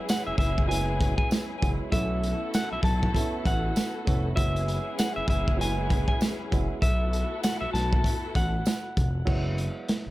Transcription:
Already playing: F#3 G#3 B3 C#4 E4 G#4 B4
0.09 F#5, snare, closed hi-hat, tambourine
0.27 F#1 E5
0.38 F#1 E5, kick, closed hi-hat
0.58 kick
0.67 F#3 G#3 B3 E4 G#5, closed hi-hat
1.01 kick, closed hi-hat
1.18 G#5, kick
1.31 snare, closed hi-hat, tambourine
1.61 F#1 F#3 G#3 B3 E4, kick, closed hi-hat
1.91 B1 A3 B3 C#4 E4 F#4 A4 E5, kick, closed hi-hat
1.95 E4
2.23 closed hi-hat
2.54 F#5, snare, closed hi-hat, tambourine
2.72 B1 E5
2.83 B1 A5, kick, closed hi-hat
3.03 kick
3.14 A3 B3 C#4 E4, kick, closed hi-hat
3.45 A1 F#5, kick, closed hi-hat
3.76 snare, closed hi-hat, tambourine
4.05 F1 A3 B3 C#4 E4, kick, closed hi-hat
4.35 F#1 F#3 G#3 B3 C#4 E4 G#4 B4 E5, kick, closed hi-hat
4.56 closed hi-hat
4.68 closed hi-hat
4.99 F#5, snare, closed hi-hat, tambourine
5.16 F#1 E5
5.28 F#1 E5, kick, closed hi-hat
5.48 kick
5.57 F#3 G#3 B3 E4
5.61 G#5, closed hi-hat
5.90 kick, closed hi-hat
6.08 G#5, kick
6.21 snare, closed hi-hat, tambourine
6.51 F#1 F#3 G#3 B3 E4, kick, closed hi-hat
6.82 B1 A3 B3 E4 F#4 A4 E5, kick, closed hi-hat
7.13 closed hi-hat
7.43 F#5, snare, closed hi-hat, tambourine
7.61 B1 E5
7.73 B1 A5, snare, closed hi-hat
7.93 kick
8.04 kick, closed hi-hat
8.35 A1 F#5, kick, closed hi-hat
8.66 snare, closed hi-hat, tambourine
8.97 F1, kick, closed hi-hat
9.25 F#1 F#3 G#3 B3 E4, kick, crash
9.58 closed hi-hat
9.89 snare, closed hi-hat
10.06 F#1

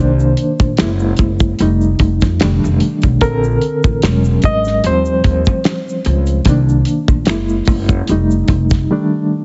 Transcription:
Already playing: C2 D#3 A#3 C5
0.00 D4
0.20 shaker
0.37 closed hi-hat
0.59 A#1, kick, closed hi-hat, shaker
0.77 F#1 G#3 A#3 E4, finger snap, snare, closed hi-hat, shaker
0.99 shaker
1.17 F#1, kick, closed hi-hat, shaker
1.39 kick, closed hi-hat, shaker
1.59 F1 G3 A3 D#4, closed hi-hat, shaker
1.81 shaker
1.99 F1, kick, closed hi-hat
2.21 F2, kick, snare, closed hi-hat, shaker
2.40 F1 D#3 G3 A3 D4, finger snap, snare, closed hi-hat, shaker
2.64 F1, shaker
2.80 closed hi-hat
3.02 B1, kick, closed hi-hat, shaker
3.21 A#1 D3 C4 A4 A#4, kick, closed hi-hat, shaker
3.43 shaker
3.61 closed hi-hat
3.84 A1, kick, shaker
4.02 E1 F#3 G#3 C#4, finger snap, snare, closed hi-hat, shaker
4.24 shaker
4.42 G#1 D#5, kick, closed hi-hat, shaker
4.65 snare, shaker
4.84 D#2 F3 G3 C4 C5, closed hi-hat, shaker
5.05 shaker
5.24 D#2, kick, closed hi-hat
5.45 D#3, kick, shaker
5.64 finger snap, snare, closed hi-hat, shaker
5.89 shaker
6.05 C#2, closed hi-hat
6.26 closed hi-hat, shaker
6.45 C2 D#3 A#3 D4, kick, closed hi-hat, shaker
6.69 shaker
6.85 closed hi-hat, shaker
7.08 A#1, kick, shaker
7.25 F#1 G#3, finger snap, snare, closed hi-hat
7.29 A#3 E4, finger snap, shaker
7.49 shaker
7.65 F#1, kick, open hi-hat, shaker
7.89 kick, closed hi-hat, shaker
8.07 F1 G3 A3, closed hi-hat, shaker
8.11 D#4
8.30 shaker
8.48 F1, kick, closed hi-hat
8.70 kick, snare, closed hi-hat, shaker
8.91 D#3 G3 A3 D4

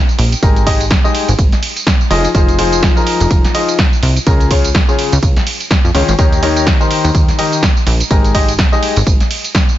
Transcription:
0.09 tambourine
0.19 A#1, open hi-hat, ride
0.32 closed hi-hat, tambourine
0.43 G#1 G#3 D#4 G4 G#4 A#4, kick, closed hi-hat, ride, tambourine
0.56 closed hi-hat, tambourine
0.67 G#3 D#4 G4 G#4 D#5, kick, open hi-hat, ride
0.80 closed hi-hat, tambourine
0.91 kick, snare, closed hi-hat, ride, tambourine
1.04 G#3 D#4 G4 G#4 D#5, tambourine
1.15 open hi-hat, ride
1.28 G#1, closed hi-hat, tambourine
1.39 G#1, kick, closed hi-hat, ride, tambourine
1.52 snare, closed hi-hat, tambourine
1.63 open hi-hat, ride
1.76 closed hi-hat, tambourine
1.87 kick, snare, closed hi-hat, ride, tambourine
2.01 tambourine
2.11 F1 F3 D#4 F4 G#4 D#5, open hi-hat, ride
2.25 closed hi-hat, tambourine
2.35 F1 F3 D#4 F4 G#4 C5, kick, closed hi-hat, ride, tambourine
2.48 closed hi-hat, tambourine
2.59 F3 D#4 F4 G#4 C5, open hi-hat, ride
2.72 closed hi-hat, tambourine
2.83 kick, snare, closed hi-hat, ride, tambourine
2.96 F3 D#4 F4 G#4 A#4, tambourine
3.07 open hi-hat, ride
3.20 F1, closed hi-hat, tambourine
3.31 F1, kick, closed hi-hat, ride, tambourine
3.45 snare, closed hi-hat, tambourine
3.55 F3 D#4 F4 G#4 D#5, open hi-hat, ride
3.69 closed hi-hat, tambourine
3.79 kick, snare, closed hi-hat, ride, tambourine
3.93 tambourine
4.03 C2, open hi-hat, ride
4.16 closed hi-hat, tambourine
4.27 C#2 C#3 C#4 F4 G#4 A#4, kick, closed hi-hat, ride, tambourine
4.40 closed hi-hat, tambourine
4.51 C#3 C#4 F4 G#4 C#5, kick, open hi-hat, ride
4.64 closed hi-hat, tambourine
4.75 kick, snare, closed hi-hat, ride, tambourine
4.88 C#3 C#4 F4 G#4 C#5, tambourine
4.99 open hi-hat, ride
5.12 C#2, closed hi-hat, tambourine
5.23 C#2, kick, closed hi-hat, ride, tambourine
5.36 snare, closed hi-hat, tambourine
5.47 open hi-hat, ride
5.60 closed hi-hat, tambourine
5.71 kick, snare, closed hi-hat, ride, tambourine
5.84 F2, tambourine
5.95 C#2 D#3 C#4 F4 G#4 C#5, open hi-hat, ride
6.08 G#1, closed hi-hat, tambourine
6.19 D#2 D#3 D#4 G4 A#4 C#5, kick, closed hi-hat, ride, tambourine
6.33 closed hi-hat, tambourine
6.43 D#3 D#4 G4 A#4 C#5, open hi-hat, ride
6.57 closed hi-hat, tambourine
6.67 kick, snare, closed hi-hat, ride, tambourine
6.80 D#3 D#4 G4 A#4 C5, tambourine
6.91 open hi-hat, ride
7.04 D#2, closed hi-hat, tambourine
7.15 D#2, kick, closed hi-hat, ride, tambourine
7.29 snare, closed hi-hat, tambourine
7.39 D#3 D#4 G4 A#4 D#5, open hi-hat, ride
7.52 closed hi-hat, tambourine
7.63 kick, snare, closed hi-hat, ride, tambourine
7.77 tambourine
7.87 A#1, open hi-hat, ride
8.00 closed hi-hat, tambourine
8.11 G#1 G#3 D#4 G4 G#4 A#4, kick, closed hi-hat, ride, tambourine
8.24 closed hi-hat, tambourine
8.35 G#3 D#4 G4 G#4 D#5, kick, open hi-hat, ride
8.48 closed hi-hat, tambourine
8.59 kick, snare, closed hi-hat, ride, tambourine
8.72 G#3 D#4 G4 G#4 D#5, tambourine
8.83 open hi-hat, ride
8.96 G#1, closed hi-hat, tambourine
9.07 G#1, kick, closed hi-hat, ride, tambourine
9.20 snare, closed hi-hat, tambourine
9.31 open hi-hat, ride
9.44 closed hi-hat, tambourine
9.55 kick, snare, closed hi-hat, ride, tambourine
9.69 tambourine

